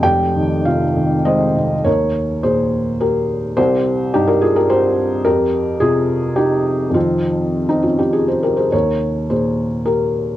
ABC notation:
X:1
M:3/4
L:1/16
Q:1/4=105
K:Fm
V:1 name="Felt piano"
[Gg]4 [Ff]4 [ce]4 | [Bd]4 [Ac]4 [GB]4 | [Gc]4 [EG] [GB] [FA] [GB] [Gc]4 | [GB]4 [FA]4 [EG]4 |
[CF]4- [CF] [CE] [DF] [EG] [FA] [Ac] [GB] [Ac] | [Bd]4 [Ac]4 [GB]4 |]
V:2 name="Felt piano" clef=bass
[F,,,F,,C,]2 E,2 C,2 E,2 A,2 C,2 | E,,4 B,,8 | C,,4 G,,8 | F,,4 C,8 |
[F,,E,F,]12 | E,,4 B,,8 |]